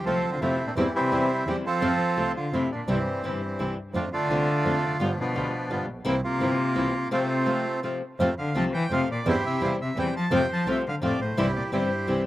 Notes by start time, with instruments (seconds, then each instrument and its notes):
0.05 double bass C2, nylon-string guitar C3 F3 A3 C4 F4, cello F3, bandoneon A3 C4 F4 A4
0.32 cello D3, bandoneon F4
0.41 double bass F2, cello C3, nylon-string guitar C3 F3 A3 C4 F4, bandoneon A3 C4 E4 F4
0.67 cello A#2, bandoneon D4
0.76 double bass E2, cello G2, nylon-string guitar C3 E3 G3 C4 E4, bandoneon E3 G3 C4 E4
0.95 cello C3, bandoneon G3 C4 E4
1.12 double bass E2, nylon-string guitar C3 E3 G3 C4 E4, bandoneon G3 C4 E4
1.46 double bass E2, nylon-string guitar C3 E3 G3 C4 E4, cello E3, bandoneon G3 C4 E4 G4
1.65 cello F3, bandoneon C4 F4 A4
1.81 double bass F2, nylon-string guitar C3 F3 A3 C4 F4, bandoneon A3 C4 F4
2.17 double bass C2, nylon-string guitar C3 F3 A3 C4 F4, bandoneon A3 C4 F4
2.36 cello D3, bandoneon F4
2.52 double bass F2, nylon-string guitar C3 F3 A3 C4 F4, cello C3, bandoneon A3 C4 E4 F4
2.72 cello A#2, bandoneon D4
2.87 double bass C2, cello G2, nylon-string guitar C3 E3 G3 C4 E4, bandoneon E3 G3 C4 E4
3.23 double bass G1, cello G2, nylon-string guitar C3 E3 G3 C4 E4, bandoneon E3 G3 C4 E4
3.58 double bass C2, nylon-string guitar C3 E3 G3 C4 E4, bandoneon G3 C4 E4
3.94 double bass F2, nylon-string guitar D3 A3 C4 F4, bandoneon A3 D4 F4
4.11 cello D3, bandoneon A3 D4 F4
4.28 double bass C2, nylon-string guitar D3 A3 C4 F4, bandoneon A3 D4 F4
4.64 double bass F2, nylon-string guitar D3 A3 C4 F4, bandoneon A3 D4 F4
4.82 double bass F1
4.99 double bass G1, cello G2, nylon-string guitar G3 B3 F4, bandoneon G3 B3 F4
5.03 bandoneon D3 F3 B3
5.17 cello B2, bandoneon F3 B3 D4
5.35 double bass D2, nylon-string guitar G3 B3 F4, bandoneon G3 B3 F4
5.70 double bass G1, nylon-string guitar G3 B3 F4, bandoneon G3 B3 F4
5.87 double bass A#1
6.04 double bass C2, nylon-string guitar C3 E3 A#3 C4 E4, bandoneon A#3 C4 E4
6.22 cello C3, bandoneon A#3 F4
6.40 double bass G1, nylon-string guitar C3 E3 A#3 C4 E4, bandoneon A#3 C4 E4
6.75 double bass C2, nylon-string guitar C3 E3 A#3 C4 E4, bandoneon A#3 C4 E4
7.11 cello C3, nylon-string guitar C3 F3 A3 C4 F4, bandoneon A3 C4 F4
7.46 nylon-string guitar C3 F3 A3 C4 F4, bandoneon A3 C4 F4
7.83 nylon-string guitar C3 F3 A3 C4 F4, bandoneon A3 C4 F4
8.19 double bass F2, nylon-string guitar C3 F3 A3 C4 F4, bandoneon A3 C4 F4
8.38 cello D3, bandoneon F5
8.55 double bass C2, nylon-string guitar C3 F3 A3 C4 F4, cello F3, bandoneon A3 C4 F4 A5
8.74 cello E3, bandoneon G5
8.90 double bass F2, nylon-string guitar C3 F3 A3 C4 F4, cello C3, bandoneon A3 C4 F4 F5
9.11 cello A#2, bandoneon D5
9.26 double bass E2, cello G2, nylon-string guitar C3 E3 G3 C4 E4, bandoneon G3 C4 E4 G4
9.30 bandoneon C5
9.45 cello C3, bandoneon E5
9.60 double bass E2, nylon-string guitar C3 E3 G3 C4 E4, cello C3, bandoneon G3 C4 E4 F5
9.81 cello C3, bandoneon E5
9.97 double bass E2, nylon-string guitar C3 E3 G3 C4 E4, cello E3, bandoneon G3 C4 E4 G5
10.16 cello F3, bandoneon A5
10.31 double bass F2, nylon-string guitar C3 F3 A3 C4 F4, cello C3, bandoneon A3 C4 F4 C5
10.36 bandoneon G5
10.52 cello F3, bandoneon A5
10.66 double bass C2, nylon-string guitar C3 F3 A3 C4 F4, cello C3, bandoneon A3 C4 F4
10.71 bandoneon E5
10.87 cello D3, bandoneon F5
11.02 double bass F2, cello A2, nylon-string guitar C3 F3 A3 C4 F4, bandoneon A3 C4 F4
11.06 bandoneon D5
11.19 double bass A#1, cello A2, bandoneon C5
11.37 double bass C2, cello G2, nylon-string guitar C3 E3 G3 C4 E4, bandoneon G3 C4 E4 G4 C5
11.56 cello A#2, bandoneon D5
11.72 double bass G1, cello G2, nylon-string guitar C3 E3 G3 C4 E4, bandoneon G3 C4 E4 G4 C5
12.07 double bass C2, nylon-string guitar C3 E3 G3 C4 E4, bandoneon G3 C4 E4